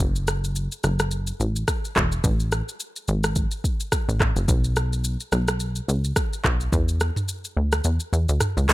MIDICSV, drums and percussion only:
0, 0, Header, 1, 2, 480
1, 0, Start_track
1, 0, Time_signature, 4, 2, 24, 8
1, 0, Tempo, 560748
1, 7477, End_track
2, 0, Start_track
2, 0, Title_t, "Drums"
2, 0, Note_on_c, 9, 36, 116
2, 0, Note_on_c, 9, 82, 88
2, 82, Note_off_c, 9, 36, 0
2, 82, Note_off_c, 9, 82, 0
2, 134, Note_on_c, 9, 82, 52
2, 219, Note_off_c, 9, 82, 0
2, 234, Note_on_c, 9, 82, 62
2, 240, Note_on_c, 9, 37, 97
2, 320, Note_off_c, 9, 82, 0
2, 326, Note_off_c, 9, 37, 0
2, 379, Note_on_c, 9, 82, 54
2, 464, Note_off_c, 9, 82, 0
2, 475, Note_on_c, 9, 82, 85
2, 561, Note_off_c, 9, 82, 0
2, 615, Note_on_c, 9, 82, 61
2, 700, Note_off_c, 9, 82, 0
2, 715, Note_on_c, 9, 82, 55
2, 719, Note_on_c, 9, 37, 85
2, 801, Note_off_c, 9, 82, 0
2, 805, Note_off_c, 9, 37, 0
2, 849, Note_on_c, 9, 82, 61
2, 854, Note_on_c, 9, 37, 103
2, 935, Note_off_c, 9, 82, 0
2, 940, Note_off_c, 9, 37, 0
2, 952, Note_on_c, 9, 82, 77
2, 1038, Note_off_c, 9, 82, 0
2, 1086, Note_on_c, 9, 82, 60
2, 1172, Note_off_c, 9, 82, 0
2, 1202, Note_on_c, 9, 82, 64
2, 1287, Note_off_c, 9, 82, 0
2, 1335, Note_on_c, 9, 82, 63
2, 1420, Note_off_c, 9, 82, 0
2, 1436, Note_on_c, 9, 37, 95
2, 1436, Note_on_c, 9, 82, 81
2, 1437, Note_on_c, 9, 36, 87
2, 1522, Note_off_c, 9, 36, 0
2, 1522, Note_off_c, 9, 37, 0
2, 1522, Note_off_c, 9, 82, 0
2, 1582, Note_on_c, 9, 82, 54
2, 1667, Note_off_c, 9, 82, 0
2, 1677, Note_on_c, 9, 36, 98
2, 1680, Note_on_c, 9, 37, 86
2, 1680, Note_on_c, 9, 39, 86
2, 1763, Note_off_c, 9, 36, 0
2, 1766, Note_off_c, 9, 37, 0
2, 1766, Note_off_c, 9, 39, 0
2, 1814, Note_on_c, 9, 82, 47
2, 1900, Note_off_c, 9, 82, 0
2, 1917, Note_on_c, 9, 36, 112
2, 1918, Note_on_c, 9, 82, 86
2, 2002, Note_off_c, 9, 36, 0
2, 2004, Note_off_c, 9, 82, 0
2, 2053, Note_on_c, 9, 82, 52
2, 2139, Note_off_c, 9, 82, 0
2, 2155, Note_on_c, 9, 82, 58
2, 2161, Note_on_c, 9, 37, 92
2, 2240, Note_off_c, 9, 82, 0
2, 2246, Note_off_c, 9, 37, 0
2, 2299, Note_on_c, 9, 82, 54
2, 2385, Note_off_c, 9, 82, 0
2, 2396, Note_on_c, 9, 82, 82
2, 2481, Note_off_c, 9, 82, 0
2, 2535, Note_on_c, 9, 82, 62
2, 2620, Note_off_c, 9, 82, 0
2, 2636, Note_on_c, 9, 82, 55
2, 2721, Note_off_c, 9, 82, 0
2, 2769, Note_on_c, 9, 82, 60
2, 2774, Note_on_c, 9, 37, 100
2, 2855, Note_off_c, 9, 82, 0
2, 2860, Note_off_c, 9, 37, 0
2, 2873, Note_on_c, 9, 82, 78
2, 2876, Note_on_c, 9, 36, 91
2, 2958, Note_off_c, 9, 82, 0
2, 2962, Note_off_c, 9, 36, 0
2, 3007, Note_on_c, 9, 82, 60
2, 3093, Note_off_c, 9, 82, 0
2, 3118, Note_on_c, 9, 36, 94
2, 3121, Note_on_c, 9, 82, 63
2, 3203, Note_off_c, 9, 36, 0
2, 3207, Note_off_c, 9, 82, 0
2, 3254, Note_on_c, 9, 82, 62
2, 3340, Note_off_c, 9, 82, 0
2, 3356, Note_on_c, 9, 37, 100
2, 3356, Note_on_c, 9, 82, 78
2, 3357, Note_on_c, 9, 36, 91
2, 3442, Note_off_c, 9, 36, 0
2, 3442, Note_off_c, 9, 37, 0
2, 3442, Note_off_c, 9, 82, 0
2, 3502, Note_on_c, 9, 82, 55
2, 3588, Note_off_c, 9, 82, 0
2, 3597, Note_on_c, 9, 36, 100
2, 3600, Note_on_c, 9, 37, 88
2, 3600, Note_on_c, 9, 39, 88
2, 3683, Note_off_c, 9, 36, 0
2, 3686, Note_off_c, 9, 37, 0
2, 3686, Note_off_c, 9, 39, 0
2, 3735, Note_on_c, 9, 82, 49
2, 3820, Note_off_c, 9, 82, 0
2, 3837, Note_on_c, 9, 36, 114
2, 3838, Note_on_c, 9, 82, 85
2, 3923, Note_off_c, 9, 36, 0
2, 3924, Note_off_c, 9, 82, 0
2, 3974, Note_on_c, 9, 82, 54
2, 4060, Note_off_c, 9, 82, 0
2, 4075, Note_on_c, 9, 82, 59
2, 4081, Note_on_c, 9, 37, 92
2, 4161, Note_off_c, 9, 82, 0
2, 4167, Note_off_c, 9, 37, 0
2, 4219, Note_on_c, 9, 82, 53
2, 4305, Note_off_c, 9, 82, 0
2, 4316, Note_on_c, 9, 82, 83
2, 4402, Note_off_c, 9, 82, 0
2, 4454, Note_on_c, 9, 82, 62
2, 4540, Note_off_c, 9, 82, 0
2, 4554, Note_on_c, 9, 82, 55
2, 4558, Note_on_c, 9, 37, 89
2, 4640, Note_off_c, 9, 82, 0
2, 4644, Note_off_c, 9, 37, 0
2, 4689, Note_on_c, 9, 82, 60
2, 4694, Note_on_c, 9, 37, 104
2, 4775, Note_off_c, 9, 82, 0
2, 4780, Note_off_c, 9, 37, 0
2, 4793, Note_on_c, 9, 82, 79
2, 4879, Note_off_c, 9, 82, 0
2, 4927, Note_on_c, 9, 82, 59
2, 5013, Note_off_c, 9, 82, 0
2, 5041, Note_on_c, 9, 82, 67
2, 5127, Note_off_c, 9, 82, 0
2, 5174, Note_on_c, 9, 82, 63
2, 5260, Note_off_c, 9, 82, 0
2, 5274, Note_on_c, 9, 37, 97
2, 5274, Note_on_c, 9, 82, 76
2, 5276, Note_on_c, 9, 36, 92
2, 5360, Note_off_c, 9, 37, 0
2, 5360, Note_off_c, 9, 82, 0
2, 5362, Note_off_c, 9, 36, 0
2, 5420, Note_on_c, 9, 82, 55
2, 5506, Note_off_c, 9, 82, 0
2, 5517, Note_on_c, 9, 36, 95
2, 5519, Note_on_c, 9, 37, 83
2, 5519, Note_on_c, 9, 39, 86
2, 5602, Note_off_c, 9, 36, 0
2, 5604, Note_off_c, 9, 37, 0
2, 5604, Note_off_c, 9, 39, 0
2, 5654, Note_on_c, 9, 82, 50
2, 5740, Note_off_c, 9, 82, 0
2, 5757, Note_on_c, 9, 36, 119
2, 5758, Note_on_c, 9, 82, 85
2, 5842, Note_off_c, 9, 36, 0
2, 5844, Note_off_c, 9, 82, 0
2, 5893, Note_on_c, 9, 82, 54
2, 5979, Note_off_c, 9, 82, 0
2, 5994, Note_on_c, 9, 82, 61
2, 6000, Note_on_c, 9, 37, 94
2, 6080, Note_off_c, 9, 82, 0
2, 6086, Note_off_c, 9, 37, 0
2, 6132, Note_on_c, 9, 45, 94
2, 6138, Note_on_c, 9, 82, 55
2, 6217, Note_off_c, 9, 45, 0
2, 6224, Note_off_c, 9, 82, 0
2, 6235, Note_on_c, 9, 82, 84
2, 6320, Note_off_c, 9, 82, 0
2, 6374, Note_on_c, 9, 82, 61
2, 6459, Note_off_c, 9, 82, 0
2, 6609, Note_on_c, 9, 82, 62
2, 6614, Note_on_c, 9, 37, 106
2, 6695, Note_off_c, 9, 82, 0
2, 6700, Note_off_c, 9, 37, 0
2, 6712, Note_on_c, 9, 82, 79
2, 6798, Note_off_c, 9, 82, 0
2, 6847, Note_on_c, 9, 82, 60
2, 6932, Note_off_c, 9, 82, 0
2, 6961, Note_on_c, 9, 82, 62
2, 7047, Note_off_c, 9, 82, 0
2, 7094, Note_on_c, 9, 82, 65
2, 7180, Note_off_c, 9, 82, 0
2, 7195, Note_on_c, 9, 37, 92
2, 7195, Note_on_c, 9, 82, 75
2, 7198, Note_on_c, 9, 45, 89
2, 7280, Note_off_c, 9, 37, 0
2, 7281, Note_off_c, 9, 82, 0
2, 7283, Note_off_c, 9, 45, 0
2, 7341, Note_on_c, 9, 82, 52
2, 7426, Note_off_c, 9, 82, 0
2, 7439, Note_on_c, 9, 37, 87
2, 7439, Note_on_c, 9, 39, 82
2, 7440, Note_on_c, 9, 46, 75
2, 7440, Note_on_c, 9, 82, 55
2, 7477, Note_off_c, 9, 37, 0
2, 7477, Note_off_c, 9, 39, 0
2, 7477, Note_off_c, 9, 46, 0
2, 7477, Note_off_c, 9, 82, 0
2, 7477, End_track
0, 0, End_of_file